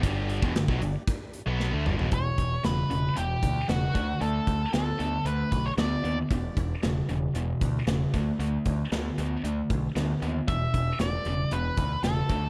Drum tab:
HH |x-x-x-x-x-x-----|x-x-x-x-x-x-x-x-|x-x-x-x-x-x-x-x-|x-x-x-x-x-x-x-x-|
SD |----o-------o---|----o-------o---|----o-------o---|----o-------o---|
T2 |--------------o-|----------------|----------------|----------------|
FT |---------------o|----------------|----------------|----------------|
BD |o--o-o--o-------|o-o-------o---o-|--o-------o-----|o-o-------o---o-|

HH |x-x-x-x-x-x-x-x-|x-x-x-x-x-x-x-x-|
SD |----o-------o---|----o-------o---|
T2 |----------------|----------------|
FT |----------------|----------------|
BD |--o-------o-----|o-o-------o---o-|